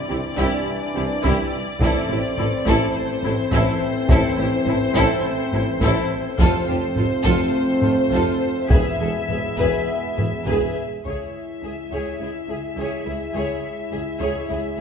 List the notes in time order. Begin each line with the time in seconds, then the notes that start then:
Already playing: E3 C4 D4 E4 G4 D5
0.09 C2 C3 E4 G4
0.37 C2 C3 E4 G4, taiko
0.95 C2 C3 E4 G4
1.24 C2 C3 E4 G4, taiko
1.80 A1 A2 E3 C4 E4 A4 C5, taiko
2.10 A1 A2 E4 G4
2.38 A1 A2 E4 A4, taiko low-mid
2.66 A1 A2 E4 A4, taiko
2.96 C5
3.23 A1 A2 E4 A4, taiko low-mid
3.51 A1 A2 E4 A4, taiko
4.09 A1 A2 E4 A4, taiko
4.37 A1 A2 E4 G4
4.66 A1 A2 E4 A4, taiko low-mid
4.94 A1 A2 E4 A4, taiko
5.52 A1 A2 E4 A4, taiko low-mid
5.81 A1 A2 E4 A4, taiko
6.38 F1 F2 A3 C4 F4 A4 C5, taiko
6.68 F1 F2 F4 G4
6.96 F1 F2 F4 A4, taiko low-mid
7.24 F1 F2 F4 A4, taiko
7.82 F1 F2 F4 A4, taiko low-mid
8.11 F1 F2 F4 A4, taiko
8.70 E1 E2 G#3 B3 E4 G#4 B4 E5, taiko
9.00 E1 E2 G#4 A4
9.29 E1 E2 G#4 B4, taiko low-mid
9.57 E1 E2 G#4 B4, taiko
10.16 E1 E2 G#4 B4, taiko low-mid
10.45 E1 E2 G#4 B4, taiko
11.04 C#2 G#3 E4 G#4 C#5 E5, taiko
11.63 C#2 G#4
11.91 C#2 G#4 C#5
12.20 C#2 E4 G#4
12.49 C#2 G#4
12.77 C#2 G#4 C#5
13.05 C#2 E4 G#4
13.34 C#2 G#4 C#5
13.92 C#2 G#4
14.20 C#2 G#4 C#5
14.49 C#2 E4 G#4